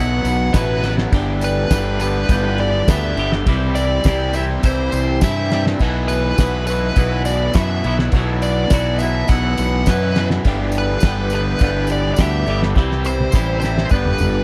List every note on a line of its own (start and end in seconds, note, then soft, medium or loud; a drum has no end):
0.00 0.22 B1 medium
0.00 0.53 B2 medium
0.00 0.54 F#3 medium
0.00 0.54 B3 medium
0.00 0.55 E4 loud
0.00 0.55 F#4 medium
0.00 3.42 B4 medium
0.00 1.08 E5 medium
0.00 0.56 F#5 loud
0.00 1.08 F#5 medium
0.00 1.11 F#6 medium
0.24 0.50 B1 medium
0.24 ride medium
0.24 tambourine medium
0.53 1.06 A1 medium
0.53 0.82 B2 medium
0.53 0.82 F#3 medium
0.53 0.83 B3 medium
0.53 0.85 E4 medium
0.53 0.84 F#4 medium
0.53 0.94 B4 medium
0.53 kick loud
0.53 snare loud
0.53 ride loud
0.53 tambourine medium
0.83 1.11 B2 medium
0.83 1.11 F#3 medium
0.83 1.12 B3 medium
0.83 1.14 E4 medium
0.83 1.12 F#4 medium
0.83 snare medium
0.83 ride medium
0.83 tambourine soft
0.98 snare medium
1.12 1.64 G1 medium
1.12 1.69 G2 medium
1.12 1.70 D3 loud
1.12 1.71 E3 loud
1.12 1.72 G3 loud
1.12 1.72 B3 medium
1.12 1.71 D4 loud
1.12 1.73 G4 medium
1.12 10.41 E5 medium
1.12 5.77 G5 medium
1.12 3.45 D6 medium
1.12 kick loud
1.12 ride medium
1.12 tambourine soft
1.41 2.00 B4 medium
1.41 ride medium
1.41 tambourine medium
1.70 2.23 G1 medium
1.70 1.98 G2 medium
1.70 1.99 D3 medium
1.70 2.00 E3 medium
1.70 2.02 G3 medium
1.70 2.01 B3 medium
1.70 2.01 D4 medium
1.70 2.02 G4 medium
1.70 kick loud
1.70 snare loud
1.70 ride medium
1.70 tambourine medium
2.00 2.29 G2 medium
2.00 2.29 D3 medium
2.00 2.30 E3 medium
2.00 2.30 G3 medium
2.00 2.31 B3 medium
2.00 2.29 D4 loud
2.00 2.31 G4 medium
2.00 2.61 B4 medium
2.00 ride medium
2.00 tambourine medium
2.29 2.81 G1 loud
2.29 2.86 G2 medium
2.29 2.87 D3 medium
2.29 2.89 E3 medium
2.29 2.89 G3 medium
2.29 2.89 B3 loud
2.29 2.88 D4 loud
2.29 2.89 G4 loud
2.29 kick loud
2.29 ride medium
2.29 tambourine medium
2.58 2.87 D5 medium
2.58 ride medium
2.87 3.14 D2 medium
2.87 3.16 G2 medium
2.87 3.17 D3 medium
2.87 3.18 E3 medium
2.87 3.18 G3 medium
2.87 3.18 B3 medium
2.87 3.17 D4 medium
2.87 3.18 G4 medium
2.87 3.30 E5 medium
2.87 kick loud
2.87 snare loud
2.87 ride medium
2.87 tambourine medium
3.16 3.43 G1 medium
3.16 3.45 G2 medium
3.16 3.45 D3 medium
3.16 3.47 E3 medium
3.16 3.46 G3 medium
3.16 3.46 B3 medium
3.16 3.45 D4 medium
3.16 3.46 G4 medium
3.16 ride medium
3.16 tambourine soft
3.32 snare medium
3.46 3.99 C2 medium
3.46 4.04 C3 medium
3.46 4.06 E3 medium
3.46 4.06 G3 medium
3.46 4.04 C4 loud
3.46 4.07 E4 medium
3.46 4.07 G4 medium
3.46 5.79 C5 medium
3.46 10.43 E6 medium
3.46 kick loud
3.46 ride medium
3.46 tambourine soft
3.75 4.35 D5 loud
3.75 ride medium
3.75 tambourine medium
4.04 4.57 C2 medium
4.04 4.34 C3 medium
4.04 4.35 E3 medium
4.04 4.35 G3 medium
4.04 4.33 C4 medium
4.04 4.36 E4 medium
4.04 kick loud
4.04 snare loud
4.04 ride medium
4.04 tambourine medium
4.08 4.36 G4 medium
4.33 4.62 C3 medium
4.33 4.64 E3 medium
4.33 4.64 G3 medium
4.33 4.63 C4 medium
4.33 4.65 E4 medium
4.33 4.65 G4 medium
4.33 4.43 E5 medium
4.33 ride medium
4.33 tambourine medium
4.63 4.90 C2 medium
4.63 5.21 C3 medium
4.63 5.22 E3 medium
4.63 5.22 G3 medium
4.63 5.21 C4 medium
4.63 5.23 E4 loud
4.63 5.23 G4 loud
4.63 5.19 C5 medium
4.63 kick loud
4.63 ride loud
4.63 tambourine medium
4.92 5.19 C2 medium
4.92 ride medium
4.92 tambourine medium
5.21 5.74 G2 medium
5.21 5.51 C3 medium
5.21 5.52 E3 medium
5.21 5.52 G3 medium
5.21 5.51 C4 medium
5.21 5.53 E4 loud
5.21 5.53 G4 medium
5.21 5.64 E5 medium
5.21 kick loud
5.21 snare loud
5.21 ride loud
5.21 tambourine loud
5.50 5.79 C3 medium
5.50 5.81 E3 medium
5.50 5.80 G3 medium
5.50 5.79 C4 medium
5.50 5.82 E4 medium
5.50 5.80 G4 medium
5.50 snare medium
5.50 ride medium
5.50 tambourine soft
5.66 snare medium
5.79 6.32 B1 medium
5.79 6.38 B2 medium
5.79 6.39 E3 medium
5.79 6.38 F#3 medium
5.79 6.40 B3 loud
5.79 6.40 E4 medium
5.79 6.41 F#4 medium
5.79 10.42 B4 medium
5.79 10.42 F#5 medium
5.79 kick loud
5.79 crash medium
5.79 tambourine soft
6.08 6.66 B4 medium
6.08 ride medium
6.08 tambourine medium
6.38 6.90 B1 medium
6.38 6.67 B2 medium
6.38 6.68 E3 medium
6.38 6.68 F#3 medium
6.38 6.68 B3 medium
6.38 6.69 E4 medium
6.38 6.70 F#4 medium
6.38 kick loud
6.38 snare loud
6.38 ride medium
6.38 tambourine loud
6.67 6.95 B2 medium
6.67 6.96 E3 medium
6.67 6.96 F#3 medium
6.67 6.97 B3 medium
6.67 6.97 E4 medium
6.67 6.98 F#4 medium
6.67 7.22 B4 medium
6.67 ride medium
6.67 tambourine medium
6.96 7.48 B1 loud
6.96 7.54 B2 medium
6.96 7.55 E3 medium
6.96 7.54 F#3 loud
6.96 7.56 B3 medium
6.96 7.56 E4 medium
6.96 7.56 F#4 medium
6.96 kick loud
6.96 ride medium
6.96 tambourine medium
7.25 7.55 D5 medium
7.25 ride medium
7.25 tambourine medium
7.54 7.81 F#2 medium
7.54 7.84 B2 medium
7.54 7.85 E3 medium
7.54 7.83 F#3 medium
7.54 7.86 B3 medium
7.54 7.86 E4 medium
7.54 7.86 F#4 medium
7.54 7.96 E5 medium
7.54 kick loud
7.54 snare loud
7.54 ride medium
7.54 tambourine medium
7.84 8.10 B1 medium
7.84 8.14 B2 medium
7.84 8.15 E3 medium
7.84 8.12 F#3 medium
7.84 8.16 B3 medium
7.84 8.16 E4 medium
7.84 8.16 F#4 medium
7.84 ride medium
7.84 tambourine soft
7.99 snare medium
8.12 8.64 B1 medium
8.12 8.71 B2 medium
8.12 8.72 E3 medium
8.12 8.70 F#3 loud
8.12 kick loud
8.12 ride medium
8.12 tambourine soft
8.16 8.73 B3 medium
8.16 8.73 E4 medium
8.16 8.73 F#4 loud
8.42 8.99 D5 loud
8.42 ride medium
8.42 tambourine medium
8.70 9.22 B1 medium
8.70 9.00 B2 medium
8.70 9.01 E3 medium
8.70 8.99 F#3 medium
8.70 9.02 B3 medium
8.70 9.02 E4 medium
8.70 9.02 F#4 medium
8.70 kick loud
8.70 snare loud
8.70 ride loud
8.70 tambourine loud
8.99 9.29 B2 medium
8.99 9.31 E3 medium
8.99 9.28 F#3 medium
8.99 9.30 B3 medium
8.99 9.30 E5 medium
8.99 ride medium
8.99 tambourine medium
9.03 9.32 E4 medium
9.03 9.31 F#4 medium
9.28 9.55 B1 medium
9.28 9.87 B2 medium
9.28 9.88 E3 medium
9.28 9.87 F#3 loud
9.28 9.87 B3 medium
9.28 9.88 F#5 loud
9.28 kick loud
9.28 ride loud
9.28 tambourine medium
9.32 9.89 E4 loud
9.32 9.88 F#4 loud
9.57 9.84 B1 medium
9.57 ride medium
9.57 tambourine medium
9.86 10.38 F#2 medium
9.86 10.15 B2 medium
9.86 10.17 E3 medium
9.86 10.17 F#3 medium
9.86 10.16 B3 medium
9.86 10.18 E4 medium
9.86 10.17 F#4 loud
9.86 10.28 B4 medium
9.86 kick loud
9.86 snare loud
9.86 ride loud
9.86 tambourine medium
10.15 10.44 B2 medium
10.15 10.46 E3 medium
10.15 10.44 F#3 medium
10.15 10.44 B3 medium
10.15 10.47 E4 medium
10.15 10.45 F#4 medium
10.15 snare medium
10.15 ride medium
10.15 tambourine soft
10.30 snare medium
10.44 10.96 G1 medium
10.44 11.02 G2 medium
10.44 11.03 D3 medium
10.44 11.03 E3 medium
10.44 11.05 G3 medium
10.44 11.05 B3 medium
10.44 11.04 D4 loud
10.44 11.06 G4 loud
10.44 12.73 B4 medium
10.44 13.87 E5 medium
10.44 14.44 G5 medium
10.44 12.73 D6 medium
10.44 kick loud
10.44 ride medium
10.44 tambourine soft
10.72 ride medium
10.72 tambourine medium
10.78 11.34 B4 medium
11.00 11.54 G1 medium
11.00 11.31 G2 medium
11.00 11.31 D3 medium
11.00 kick loud
11.00 snare loud
11.00 ride loud
11.00 tambourine medium
11.04 11.32 E3 medium
11.04 11.34 G3 medium
11.04 11.33 B3 loud
11.04 11.32 D4 medium
11.04 11.34 G4 loud
11.30 11.60 G2 medium
11.30 11.60 D3 medium
11.30 11.60 E3 medium
11.30 11.61 D4 medium
11.30 ride medium
11.30 tambourine medium
11.34 11.62 G3 medium
11.34 11.62 B3 medium
11.34 11.62 G4 medium
11.34 11.87 B4 medium
11.59 12.12 G1 loud
11.59 12.17 G2 medium
11.59 12.17 D3 loud
11.59 12.17 E3 loud
11.59 12.19 D4 loud
11.59 kick loud
11.59 ride medium
11.59 tambourine medium
11.63 12.18 G3 loud
11.63 12.19 B3 loud
11.63 12.19 G4 medium
11.87 ride medium
11.87 tambourine medium
11.92 12.11 D5 loud
12.14 12.19 D5 medium
12.14 tambourine medium
12.18 12.44 D2 medium
12.18 12.47 G2 medium
12.18 12.47 D3 medium
12.18 12.47 E3 medium
12.18 12.48 G3 loud
12.18 12.48 B3 medium
12.18 12.48 D4 medium
12.18 12.49 G4 loud
12.18 12.60 E5 medium
12.18 kick loud
12.18 snare loud
12.18 ride medium
12.46 12.72 G1 medium
12.46 12.74 G2 medium
12.46 12.74 D3 medium
12.46 12.75 E3 medium
12.46 12.75 G3 medium
12.46 12.75 B3 medium
12.46 12.75 D4 medium
12.46 12.75 G4 medium
12.46 ride medium
12.46 tambourine soft
12.62 snare medium
12.75 13.27 C2 medium
12.75 13.32 C3 medium
12.75 13.33 E3 medium
12.75 13.33 G3 medium
12.75 13.32 C4 loud
12.75 13.34 E4 loud
12.75 13.34 G4 loud
12.75 13.89 C5 medium
12.75 13.90 E6 medium
12.75 kick loud
12.75 snare medium
12.75 tambourine soft
12.91 snare medium
13.05 13.58 C5 loud
13.05 tambourine medium
13.20 high tom medium
13.32 13.84 A1 medium
13.32 13.61 C3 medium
13.32 13.63 E3 medium
13.32 13.63 G3 medium
13.32 13.61 C4 medium
13.32 13.63 E4 medium
13.32 13.64 G4 medium
13.32 kick loud
13.32 snare medium
13.32 tambourine loud
13.60 13.89 C3 medium
13.60 13.89 C4 medium
13.60 13.87 C5 loud
13.60 snare medium
13.60 tambourine medium
13.64 13.90 E3 medium
13.64 13.90 G3 medium
13.64 13.90 E4 medium
13.64 13.91 G4 medium
13.78 snare medium
13.89 14.16 G1 medium
13.89 14.44 G2 medium
13.89 14.44 D3 medium
13.89 14.44 G3 medium
13.89 14.44 B3 medium
13.89 14.44 B4 medium
13.89 14.44 D5 medium
13.89 14.44 D6 medium
13.89 kick loud
13.89 tambourine medium
13.94 14.44 D4 loud
13.94 14.44 G4 loud
14.06 mid tom medium
14.18 14.44 G1 medium
14.18 mid tom medium
14.18 tambourine medium